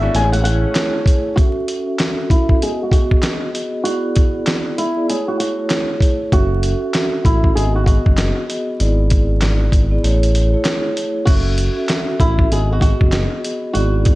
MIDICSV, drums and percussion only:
0, 0, Header, 1, 2, 480
1, 0, Start_track
1, 0, Key_signature, 3, "minor"
1, 0, Tempo, 618557
1, 1065, Time_signature, 4, 2, 24, 8
1, 10982, End_track
2, 0, Start_track
2, 0, Title_t, "Drums"
2, 113, Note_on_c, 9, 42, 83
2, 191, Note_off_c, 9, 42, 0
2, 259, Note_on_c, 9, 42, 53
2, 337, Note_off_c, 9, 42, 0
2, 351, Note_on_c, 9, 42, 79
2, 428, Note_off_c, 9, 42, 0
2, 584, Note_on_c, 9, 39, 92
2, 584, Note_on_c, 9, 42, 91
2, 588, Note_on_c, 9, 38, 116
2, 661, Note_off_c, 9, 39, 0
2, 662, Note_off_c, 9, 42, 0
2, 665, Note_off_c, 9, 38, 0
2, 820, Note_on_c, 9, 36, 95
2, 833, Note_on_c, 9, 42, 74
2, 898, Note_off_c, 9, 36, 0
2, 911, Note_off_c, 9, 42, 0
2, 1067, Note_on_c, 9, 36, 116
2, 1069, Note_on_c, 9, 42, 87
2, 1144, Note_off_c, 9, 36, 0
2, 1147, Note_off_c, 9, 42, 0
2, 1305, Note_on_c, 9, 42, 77
2, 1382, Note_off_c, 9, 42, 0
2, 1543, Note_on_c, 9, 42, 76
2, 1547, Note_on_c, 9, 39, 89
2, 1552, Note_on_c, 9, 38, 112
2, 1620, Note_off_c, 9, 42, 0
2, 1625, Note_off_c, 9, 39, 0
2, 1629, Note_off_c, 9, 38, 0
2, 1785, Note_on_c, 9, 36, 97
2, 1791, Note_on_c, 9, 42, 70
2, 1863, Note_off_c, 9, 36, 0
2, 1868, Note_off_c, 9, 42, 0
2, 1933, Note_on_c, 9, 36, 81
2, 2011, Note_off_c, 9, 36, 0
2, 2034, Note_on_c, 9, 42, 78
2, 2112, Note_off_c, 9, 42, 0
2, 2262, Note_on_c, 9, 36, 89
2, 2272, Note_on_c, 9, 42, 73
2, 2339, Note_off_c, 9, 36, 0
2, 2349, Note_off_c, 9, 42, 0
2, 2416, Note_on_c, 9, 36, 84
2, 2493, Note_off_c, 9, 36, 0
2, 2504, Note_on_c, 9, 39, 89
2, 2505, Note_on_c, 9, 42, 83
2, 2508, Note_on_c, 9, 38, 109
2, 2582, Note_off_c, 9, 39, 0
2, 2582, Note_off_c, 9, 42, 0
2, 2586, Note_off_c, 9, 38, 0
2, 2754, Note_on_c, 9, 42, 72
2, 2831, Note_off_c, 9, 42, 0
2, 2990, Note_on_c, 9, 42, 89
2, 3067, Note_off_c, 9, 42, 0
2, 3225, Note_on_c, 9, 42, 77
2, 3232, Note_on_c, 9, 36, 98
2, 3302, Note_off_c, 9, 42, 0
2, 3310, Note_off_c, 9, 36, 0
2, 3463, Note_on_c, 9, 42, 78
2, 3468, Note_on_c, 9, 39, 89
2, 3472, Note_on_c, 9, 38, 112
2, 3541, Note_off_c, 9, 42, 0
2, 3546, Note_off_c, 9, 39, 0
2, 3550, Note_off_c, 9, 38, 0
2, 3711, Note_on_c, 9, 42, 68
2, 3789, Note_off_c, 9, 42, 0
2, 3954, Note_on_c, 9, 42, 74
2, 4031, Note_off_c, 9, 42, 0
2, 4191, Note_on_c, 9, 42, 73
2, 4269, Note_off_c, 9, 42, 0
2, 4424, Note_on_c, 9, 39, 85
2, 4424, Note_on_c, 9, 42, 89
2, 4428, Note_on_c, 9, 38, 105
2, 4501, Note_off_c, 9, 39, 0
2, 4502, Note_off_c, 9, 42, 0
2, 4506, Note_off_c, 9, 38, 0
2, 4660, Note_on_c, 9, 36, 89
2, 4673, Note_on_c, 9, 42, 70
2, 4737, Note_off_c, 9, 36, 0
2, 4751, Note_off_c, 9, 42, 0
2, 4906, Note_on_c, 9, 36, 123
2, 4909, Note_on_c, 9, 42, 89
2, 4984, Note_off_c, 9, 36, 0
2, 4986, Note_off_c, 9, 42, 0
2, 5144, Note_on_c, 9, 42, 73
2, 5222, Note_off_c, 9, 42, 0
2, 5383, Note_on_c, 9, 42, 81
2, 5388, Note_on_c, 9, 39, 90
2, 5392, Note_on_c, 9, 38, 110
2, 5460, Note_off_c, 9, 42, 0
2, 5465, Note_off_c, 9, 39, 0
2, 5469, Note_off_c, 9, 38, 0
2, 5625, Note_on_c, 9, 36, 97
2, 5631, Note_on_c, 9, 42, 71
2, 5702, Note_off_c, 9, 36, 0
2, 5708, Note_off_c, 9, 42, 0
2, 5773, Note_on_c, 9, 36, 80
2, 5850, Note_off_c, 9, 36, 0
2, 5873, Note_on_c, 9, 42, 76
2, 5951, Note_off_c, 9, 42, 0
2, 6101, Note_on_c, 9, 36, 89
2, 6111, Note_on_c, 9, 42, 72
2, 6179, Note_off_c, 9, 36, 0
2, 6189, Note_off_c, 9, 42, 0
2, 6255, Note_on_c, 9, 36, 83
2, 6332, Note_off_c, 9, 36, 0
2, 6344, Note_on_c, 9, 39, 88
2, 6344, Note_on_c, 9, 42, 85
2, 6348, Note_on_c, 9, 38, 106
2, 6421, Note_off_c, 9, 39, 0
2, 6422, Note_off_c, 9, 42, 0
2, 6426, Note_off_c, 9, 38, 0
2, 6593, Note_on_c, 9, 42, 69
2, 6671, Note_off_c, 9, 42, 0
2, 6829, Note_on_c, 9, 42, 86
2, 6907, Note_off_c, 9, 42, 0
2, 7064, Note_on_c, 9, 42, 76
2, 7072, Note_on_c, 9, 36, 99
2, 7142, Note_off_c, 9, 42, 0
2, 7149, Note_off_c, 9, 36, 0
2, 7303, Note_on_c, 9, 42, 78
2, 7307, Note_on_c, 9, 39, 92
2, 7312, Note_on_c, 9, 38, 111
2, 7380, Note_off_c, 9, 42, 0
2, 7385, Note_off_c, 9, 39, 0
2, 7389, Note_off_c, 9, 38, 0
2, 7545, Note_on_c, 9, 36, 94
2, 7550, Note_on_c, 9, 42, 69
2, 7622, Note_off_c, 9, 36, 0
2, 7628, Note_off_c, 9, 42, 0
2, 7793, Note_on_c, 9, 42, 79
2, 7871, Note_off_c, 9, 42, 0
2, 7939, Note_on_c, 9, 42, 51
2, 8017, Note_off_c, 9, 42, 0
2, 8031, Note_on_c, 9, 42, 74
2, 8108, Note_off_c, 9, 42, 0
2, 8264, Note_on_c, 9, 39, 88
2, 8264, Note_on_c, 9, 42, 91
2, 8268, Note_on_c, 9, 38, 110
2, 8341, Note_off_c, 9, 39, 0
2, 8341, Note_off_c, 9, 42, 0
2, 8345, Note_off_c, 9, 38, 0
2, 8512, Note_on_c, 9, 42, 72
2, 8590, Note_off_c, 9, 42, 0
2, 8745, Note_on_c, 9, 49, 90
2, 8746, Note_on_c, 9, 36, 118
2, 8748, Note_on_c, 9, 42, 91
2, 8823, Note_off_c, 9, 49, 0
2, 8824, Note_off_c, 9, 36, 0
2, 8826, Note_off_c, 9, 42, 0
2, 8984, Note_on_c, 9, 42, 78
2, 9061, Note_off_c, 9, 42, 0
2, 9222, Note_on_c, 9, 42, 80
2, 9227, Note_on_c, 9, 39, 87
2, 9231, Note_on_c, 9, 38, 113
2, 9300, Note_off_c, 9, 42, 0
2, 9304, Note_off_c, 9, 39, 0
2, 9309, Note_off_c, 9, 38, 0
2, 9464, Note_on_c, 9, 36, 100
2, 9470, Note_on_c, 9, 42, 73
2, 9542, Note_off_c, 9, 36, 0
2, 9547, Note_off_c, 9, 42, 0
2, 9612, Note_on_c, 9, 36, 83
2, 9690, Note_off_c, 9, 36, 0
2, 9713, Note_on_c, 9, 42, 77
2, 9791, Note_off_c, 9, 42, 0
2, 9941, Note_on_c, 9, 36, 88
2, 9951, Note_on_c, 9, 42, 75
2, 10019, Note_off_c, 9, 36, 0
2, 10028, Note_off_c, 9, 42, 0
2, 10095, Note_on_c, 9, 36, 84
2, 10172, Note_off_c, 9, 36, 0
2, 10183, Note_on_c, 9, 39, 88
2, 10183, Note_on_c, 9, 42, 86
2, 10187, Note_on_c, 9, 38, 111
2, 10260, Note_off_c, 9, 39, 0
2, 10261, Note_off_c, 9, 42, 0
2, 10265, Note_off_c, 9, 38, 0
2, 10433, Note_on_c, 9, 42, 73
2, 10510, Note_off_c, 9, 42, 0
2, 10669, Note_on_c, 9, 42, 90
2, 10747, Note_off_c, 9, 42, 0
2, 10905, Note_on_c, 9, 42, 78
2, 10912, Note_on_c, 9, 36, 99
2, 10982, Note_off_c, 9, 36, 0
2, 10982, Note_off_c, 9, 42, 0
2, 10982, End_track
0, 0, End_of_file